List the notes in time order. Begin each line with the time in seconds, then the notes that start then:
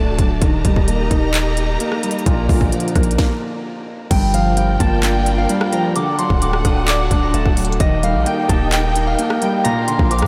Already playing: D1 D3 F#3 A3 D4 F#4 A4 D5 A5
0.19 D1 F#3, kick, closed hi-hat
0.41 D#1 D#3 G4 A#4 D#5 A#5, kick, closed hi-hat
0.65 D#1 G3, kick, closed hi-hat
0.76 kick
0.88 A#3, closed hi-hat
1.10 D#1 D#4, kick, closed hi-hat
1.34 D#5, clap, closed hi-hat
1.57 D#4, closed hi-hat
1.80 A#3, closed hi-hat
1.92 cross-stick
2.03 G3, closed hi-hat
2.11 closed hi-hat
2.19 closed hi-hat
2.26 A#1 A#2 F4 A#4 D5, kick, closed hi-hat
2.49 A#1 D3, kick, open hi-hat
2.61 kick
2.72 F3, closed hi-hat
2.80 closed hi-hat
2.88 closed hi-hat
2.95 A#1 A#3, kick, cross-stick, closed hi-hat
3.03 closed hi-hat
3.11 closed hi-hat
3.18 kick, snare
4.11 G1 G2 F4 A#4 D5 G5, kick, closed hi-hat, crash
4.34 F3 F5, closed hi-hat
4.57 G3 G5, closed hi-hat
4.80 G1 A#3 A5, kick, closed hi-hat
5.03 D4 G5, clap, closed hi-hat
5.26 A#3, closed hi-hat
5.38 F5
5.49 G3, closed hi-hat
5.61 cross-stick
5.72 F3 A#5, closed hi-hat
5.95 D3 D4 F#4 A4 F#5 D6, closed hi-hat
6.18 F#3 C6, closed hi-hat
6.30 D1, kick
6.42 A3 D6, closed hi-hat
6.53 cross-stick
6.65 D1 D4 D#6, kick, cross-stick, closed hi-hat
6.88 D5 D6, clap, closed hi-hat
7.11 D1 D4, kick, closed hi-hat
7.23 A#5
7.34 D1 A3 A5, closed hi-hat
7.46 D1, kick
7.57 F#3, closed hi-hat, open hi-hat
7.65 closed hi-hat
7.72 closed hi-hat
7.80 D#1 D#3 D#4 G4 A#4 D#5 G5, kick, closed hi-hat
8.03 G3 F5, closed hi-hat
8.15 A#1
8.26 A#3 G5, closed hi-hat
8.49 D#1 D#4 A5, kick, closed hi-hat
8.72 D#5 G5, clap, closed hi-hat
8.95 D#4, closed hi-hat
9.07 F5
9.18 A#3, closed hi-hat
9.30 cross-stick
9.42 G3 G5, closed hi-hat
9.64 A#2 D4 F4 F5 A#5, closed hi-hat
9.88 D3 C6, closed hi-hat
9.99 A#1, kick
10.10 F3 D6, closed hi-hat
10.19 A#2, cross-stick, closed hi-hat